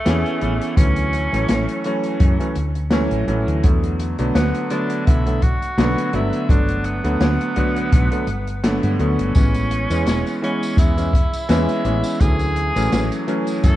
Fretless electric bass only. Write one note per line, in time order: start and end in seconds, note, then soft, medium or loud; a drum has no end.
0.07 0.23 E2 medium
0.42 0.58 A1 loud
0.77 1.28 D2 loud
1.33 1.47 A1 medium
1.49 1.66 A1 medium
2.20 2.37 F#2 loud
2.56 3.06 D2 medium
3.11 3.25 A1 loud
3.27 3.44 A1 loud
3.47 3.61 D2 loud
3.64 4.14 E2 medium
4.19 4.32 B1 medium
4.35 4.51 D2 medium
5.07 5.57 B1 medium
5.62 muted fretless electric bass stroke soft
5.77 5.94 B1 medium
6.13 6.30 G1 loud
6.49 6.99 G1 medium
7.04 7.18 D2 medium
7.20 7.37 D2 medium
7.93 8.09 B1 loud
8.27 8.78 G1 medium
8.83 8.97 G2 loud
8.99 9.16 D2 loud
9.19 9.32 G1 loud
9.35 9.85 A1 medium
9.90 10.04 E2 medium
10.06 10.23 E1 medium
10.77 11.28 E2 medium
11.33 muted fretless electric bass stroke soft
11.49 11.66 E2 loud
11.85 12.01 A1 loud
12.21 12.71 D2 loud
12.76 12.89 A1 medium
12.92 13.08 A1 medium
13.64 13.76 F#2 loud